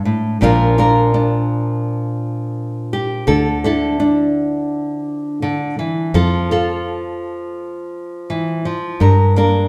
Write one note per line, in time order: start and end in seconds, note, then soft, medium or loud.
0.00 0.42 D4 medium
0.00 0.39 A#4 medium
0.05 0.40 A2 medium
0.41 3.24 A#1 medium
0.41 3.23 A#2 medium
0.41 6.13 F3 medium
0.41 0.78 D4 medium
0.41 0.78 F4 medium
0.41 0.78 A#4 medium
0.78 1.14 D4 medium
0.78 3.65 F4 medium
0.78 2.93 A#4 medium
1.14 3.24 D4 medium
2.93 3.27 G4 medium
3.27 6.10 D2 medium
3.27 5.41 D3 medium
3.27 3.66 A4 medium
3.64 3.98 D4 medium
3.64 6.10 E4 medium
3.64 6.11 A4 medium
4.00 6.10 D4 medium
5.42 5.78 D3 medium
5.79 6.14 E3 medium
6.14 8.96 F2 medium
6.14 8.64 F3 medium
6.14 6.50 A4 medium
6.51 6.86 F4 medium
6.51 8.97 A4 medium
8.30 8.65 E3 medium
8.65 9.00 F3 medium
9.00 9.68 G2 medium
9.00 9.37 A#4 medium
9.36 9.68 A#3 medium
9.36 9.68 D4 medium
9.36 9.68 A#4 medium